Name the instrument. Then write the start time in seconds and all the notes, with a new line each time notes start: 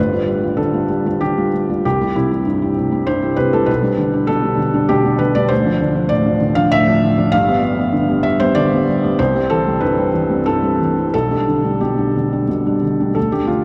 felt piano
Already playing: G1 G2 B4
0.13 G3 F4
0.26 G3
0.43 G3 F4
0.57 D3 A4
0.73 G3 F4
0.89 G3
1.06 G3 F4
1.21 D3 G4
1.37 G3 F4
1.53 G3
1.70 G3 F4
1.85 C2 G4
2.01 G3 E4
2.16 C3 E4
2.31 G3 E4
2.46 G2
2.62 G3 E4
2.77 C3
2.91 G3 E4
3.07 G2 C5
3.22 G3 E4
3.36 C3 B4
3.53 G3 E4 A4
3.66 B1 B4
3.83 G3 D4
3.98 D3
4.13 G3 D4
4.27 B2 A4
4.43 G3 D4
4.57 D3
4.73 G3 D4
4.89 B2 G4
5.05 G3 D4
5.19 D3 B4
5.35 G3 D4 D5
5.48 D2 C5
5.65 F3 D4
5.81 D3
5.95 F3 D4
6.09 A2 D5
6.26 F3 D4
6.41 D3
6.55 F3 D4 F5
6.72 A2 E5
6.87 F3 D4
7.03 D3
7.18 F3 D4
7.32 G1 G2 F5
7.48 G3 B3
7.61 G3
7.77 G3 B3
7.93 D3
8.09 G3 B3
8.23 G3 E5
8.40 G3 B3 C5
8.55 D3 D5
8.73 G3 B3
8.88 G3
9.03 G3 B3
9.19 C2 C5
9.35 G3 C4
9.50 E3 A4
9.66 G3 C4
9.81 G2 B4
9.97 G3 C4
10.13 E3
10.30 G3 C4
10.46 G2 A4
10.63 G3 C4
10.80 E3
10.98 G3 C4
11.14 B1 A4
11.31 G3 D4
11.48 D3
11.64 G3 D4
11.81 B2 G4
11.97 G3 D4
12.16 D3
12.32 G3 D4
12.49 B2
12.66 G3 D4
12.83 D3
13.00 G3 D4
13.15 D2 A4
13.32 A3 D4 G4
13.47 D3 F4